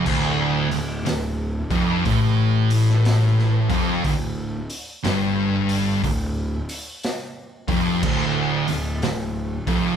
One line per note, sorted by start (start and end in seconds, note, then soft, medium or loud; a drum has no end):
0.05 0.67 D1 loud
0.05 0.69 D2 loud
0.05 kick loud
0.05 crash loud
0.70 1.04 D1 medium
0.70 0.99 D2 medium
0.70 open hi-hat medium
1.05 1.67 D1 medium
1.05 1.57 D2 medium
1.05 snare loud
1.05 open hi-hat medium
1.71 2.03 F1 loud
1.71 2.05 F2 loud
1.71 kick loud
1.71 open hi-hat medium
2.05 3.66 A1 loud
2.05 3.68 A2 loud
2.05 kick loud
2.05 open hi-hat medium
2.70 open hi-hat medium
2.89 snare soft
3.05 snare loud
3.05 open hi-hat medium
3.39 snare soft
3.69 4.02 F1 loud
3.69 4.03 F2 medium
3.69 kick loud
3.69 open hi-hat medium
4.04 4.65 D1 medium
4.04 4.56 D2 medium
4.04 kick medium
4.04 open hi-hat medium
4.70 open hi-hat medium
5.04 6.00 G1 medium
5.04 6.03 G2 loud
5.04 snare loud
5.04 open hi-hat medium
5.69 open hi-hat medium
6.03 6.65 D1 medium
6.03 6.55 D2 medium
6.03 kick loud
6.03 open hi-hat medium
6.69 open hi-hat medium
7.03 snare loud
7.03 open hi-hat medium
7.68 8.01 F1 loud
7.68 8.02 F2 medium
7.68 kick loud
7.68 open hi-hat medium
8.03 8.64 D1 loud
8.03 8.66 D2 loud
8.03 kick loud
8.03 crash loud
8.67 9.00 D1 medium
8.67 8.96 D2 medium
8.67 open hi-hat medium
9.02 9.64 D1 medium
9.02 9.54 D2 medium
9.02 snare loud
9.02 open hi-hat medium
9.67 9.96 F1 loud
9.67 9.96 F2 loud
9.67 kick loud
9.67 open hi-hat medium